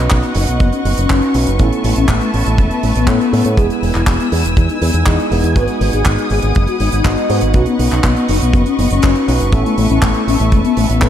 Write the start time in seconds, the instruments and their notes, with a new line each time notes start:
Already playing: tine electric piano C#4 D#4 F#4 B4, string section B4 D#5 F#5 C#6
0.10 fingered electric bass B1, analog polysynth B3, kick, clap, closed hi-hat
0.23 analog polysynth B3, closed hi-hat
0.34 fingered electric bass F#1, analog polysynth D#4, open hi-hat
0.47 fingered electric bass B1, analog polysynth B3, closed hi-hat
0.60 fingered electric bass F#1, analog polysynth B3, kick, closed hi-hat
0.73 analog polysynth C#4, closed hi-hat
0.85 fingered electric bass F#1, analog polysynth B3, open hi-hat
0.97 fingered electric bass F#1, analog polysynth C#4, closed hi-hat
1.09 fingered electric bass F#1, tine electric piano C#4 D#4 F#4 B4, kick, clap, closed hi-hat
1.22 closed hi-hat
1.34 fingered electric bass B1, tine electric piano C#4 D#4 F#4 B4, open hi-hat
1.47 fingered electric bass F#1, closed hi-hat
1.59 fingered electric bass A1, tine electric piano B3 C#4 E4 A4, analog polysynth E4, string section E5 A5, kick, closed hi-hat
1.72 analog polysynth A3, closed hi-hat
1.84 fingered electric bass A1, analog polysynth A3, open hi-hat
1.96 fingered electric bass A1, analog polysynth C#4, closed hi-hat
2.08 fingered electric bass A1, analog polysynth A3, kick, clap, closed hi-hat
2.21 analog polysynth A3, closed hi-hat
2.34 fingered electric bass A1, analog polysynth C#4, open hi-hat
2.46 fingered electric bass A1, analog polysynth A3, closed hi-hat
2.58 fingered electric bass E1, analog polysynth A3, kick, closed hi-hat
2.71 analog polysynth B3, closed hi-hat
2.83 fingered electric bass A1, analog polysynth A3, open hi-hat
2.96 fingered electric bass A1, analog polysynth B3, closed hi-hat
3.07 fingered electric bass A2, tine electric piano B3 C#4 E4 A4, kick, clap, closed hi-hat
3.21 closed hi-hat
3.33 fingered electric bass A2, tine electric piano B3 C#4 E4 A4, open hi-hat
3.45 fingered electric bass A2, closed hi-hat
3.57 fingered electric bass E1, tine electric piano G#3 B3 E4 G#4, analog polysynth G#4, string section G#5 E6, kick, closed hi-hat
3.70 analog polysynth B3, closed hi-hat
3.82 fingered electric bass E1, analog polysynth B3, open hi-hat
3.95 fingered electric bass E1, analog polysynth E4, clap, closed hi-hat
4.07 fingered electric bass E1, analog polysynth B3, kick, clap, closed hi-hat
4.20 analog polysynth B3, closed hi-hat
4.32 fingered electric bass E2, analog polysynth E4, open hi-hat
4.44 fingered electric bass E1, analog polysynth B3, closed hi-hat
4.57 fingered electric bass E2, analog polysynth B3, kick, closed hi-hat
4.69 analog polysynth D#4, closed hi-hat
4.81 fingered electric bass E2, analog polysynth B3, open hi-hat
4.94 fingered electric bass E2, analog polysynth D#4, closed hi-hat
5.06 fingered electric bass E2, tine electric piano G#3 B3 E4 G#4, kick, clap, closed hi-hat
5.20 closed hi-hat
5.31 fingered electric bass E1, tine electric piano G#3 B3 E4 G#4, open hi-hat
5.44 fingered electric bass E2, closed hi-hat
5.56 fingered electric bass G#1, tine electric piano G#3 B3 D#4 F#4, string section B4 F#5 D#6, analog polysynth B4, kick, closed hi-hat
5.68 analog polysynth D#4, closed hi-hat
5.81 fingered electric bass G#1, analog polysynth D#4, open hi-hat
5.93 fingered electric bass G#1, analog polysynth G#4, closed hi-hat
6.05 fingered electric bass G#1, analog polysynth D#4, kick, clap, closed hi-hat
6.18 analog polysynth D#4, closed hi-hat
6.30 fingered electric bass G#1, analog polysynth G#4, open hi-hat
6.42 fingered electric bass G#1, analog polysynth D#4, closed hi-hat
6.55 fingered electric bass F#1, analog polysynth D#4, kick, closed hi-hat
6.67 analog polysynth F#4, closed hi-hat
6.80 fingered electric bass G#1, analog polysynth D#4, open hi-hat
6.92 fingered electric bass G#1, analog polysynth D#4, closed hi-hat
7.05 fingered electric bass G#1, tine electric piano G#3 B3 D#4 F#4, kick, clap, closed hi-hat
7.17 closed hi-hat
7.30 fingered electric bass G#2, tine electric piano G#3 B3 D#4 F#4, open hi-hat
7.41 fingered electric bass G#1, closed hi-hat
7.54 fingered electric bass B1, tine electric piano C#4 D#4 F#4 B4, analog polysynth F#4, string section D#5 C#6, kick, closed hi-hat
7.66 analog polysynth B3, closed hi-hat
7.79 fingered electric bass B1, analog polysynth B3, open hi-hat
7.91 fingered electric bass B1, analog polysynth D#4, clap, closed hi-hat
8.04 fingered electric bass B1, analog polysynth B3, kick, clap, closed hi-hat
8.16 analog polysynth B3, closed hi-hat
8.28 fingered electric bass F#1, analog polysynth D#4, open hi-hat
8.41 fingered electric bass B1, analog polysynth B3, closed hi-hat
8.53 fingered electric bass F#1, analog polysynth B3, kick, closed hi-hat
8.66 analog polysynth C#4, closed hi-hat
8.78 fingered electric bass F#1, analog polysynth B3, open hi-hat
8.90 fingered electric bass F#1, analog polysynth C#4, closed hi-hat
9.02 fingered electric bass F#1, tine electric piano C#4 D#4 F#4 B4, kick, clap, closed hi-hat
9.15 closed hi-hat
9.28 fingered electric bass B1, tine electric piano C#4 D#4 F#4 B4, open hi-hat
9.40 fingered electric bass F#1, closed hi-hat
9.52 fingered electric bass A1, tine electric piano B3 C#4 E4 A4, analog polysynth E4, string section E5 A5, kick, closed hi-hat
9.65 analog polysynth A3, closed hi-hat
9.78 fingered electric bass A1, analog polysynth A3, open hi-hat
9.90 fingered electric bass A1, analog polysynth C#4, closed hi-hat
10.02 fingered electric bass A1, analog polysynth A3, kick, clap, closed hi-hat
10.14 analog polysynth A3, closed hi-hat
10.27 fingered electric bass A1, analog polysynth C#4, open hi-hat
10.40 fingered electric bass A1, analog polysynth A3, closed hi-hat
10.52 fingered electric bass E1, analog polysynth A3, kick, closed hi-hat
10.64 analog polysynth B3, closed hi-hat
10.77 fingered electric bass A1, analog polysynth A3, open hi-hat
10.89 fingered electric bass A1, analog polysynth B3, closed hi-hat
11.02 fingered electric bass A2, tine electric piano B3 C#4 E4 A4, kick, clap, closed hi-hat